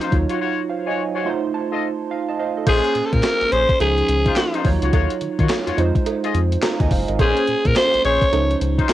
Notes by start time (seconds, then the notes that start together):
Already playing: F3 C#4 D#4 C5
0.01 D#4 F4 C5, closed hi-hat
0.11 D#2 F#3 D#4 F4 C#5, kick, closed hi-hat
0.29 F4 F#4 C#5, closed hi-hat
0.40 F4 F#4 C#5
0.69 C5 F5
0.86 F4 F#4 C#5 D#5 G#5
1.14 F4 F#4 C#5 F#5
1.25 A3 D#4 F4 C5 C6
1.54 A5
1.71 F4 A4 D#5
2.11 F5
2.29 D#5 A5
2.39 C5 D#5 F5
2.57 A4 D#5
2.66 A#1 A#3 C#4 G#4 C5, kick, closed hi-hat, crash, cowbell
2.84 closed hi-hat
2.95 A#2, closed hi-hat
3.06 A4
3.13 A#2 A#4, kick, closed hi-hat
3.23 snare, clap, closed hi-hat, cowbell
3.41 A#1, closed hi-hat
3.51 A#1 C#4 G#4 C5, closed hi-hat
3.69 kick, closed hi-hat
3.80 C#2 F3 C#4 D#4 G#4 C5, closed hi-hat, cowbell
3.98 closed hi-hat
4.08 C#2, closed hi-hat
4.25 D#4 F4 C5, kick, closed hi-hat
4.36 snare, clap, closed hi-hat, cowbell
4.53 D#4 F4 C5, closed hi-hat
4.64 D#2 F3 D#4 F4 C#5, kick, open hi-hat
4.71 F#3
4.82 C#2 F4 F#4 C#5, closed hi-hat
4.93 D#2 F4 F#4 C#5, kick, closed hi-hat, cowbell
5.10 closed hi-hat
5.21 D#3, closed hi-hat
5.39 D#3 F4 F#4 C#5, kick, closed hi-hat
5.49 snare, clap, closed hi-hat, cowbell
5.67 F2 F4 F#4 C#5, closed hi-hat
5.77 F2 G#3 D#4 F4 C5, closed hi-hat
5.95 kick, closed hi-hat
6.06 closed hi-hat, cowbell
6.23 F4 G#4 D#5, closed hi-hat
6.34 F2, closed hi-hat
6.52 closed hi-hat
6.63 F5 A#5, snare, clap, closed hi-hat, cowbell
6.80 D#2 D#5 G#5, kick, closed hi-hat
6.91 F#1 C5 F5, kick, open hi-hat
7.08 G#1 A#4 D#5, closed hi-hat
7.18 A#1 A#3 C4 C#4 G#4 C5, kick, closed hi-hat, cowbell
7.25 C#4
7.37 closed hi-hat
7.47 A#2, closed hi-hat
7.65 A#2 A#4, kick, closed hi-hat
7.76 C5, snare, clap, closed hi-hat, cowbell
7.94 A#1, closed hi-hat
8.04 A#1 C#4 G#4 C5 C#5, closed hi-hat
8.22 kick, closed hi-hat
8.32 C#2 F3 C#4 D#4 C5, closed hi-hat, cowbell
8.51 closed hi-hat
8.61 C#2, closed hi-hat
8.78 D#4 F4 C5, kick, closed hi-hat
8.89 snare, clap, closed hi-hat, cowbell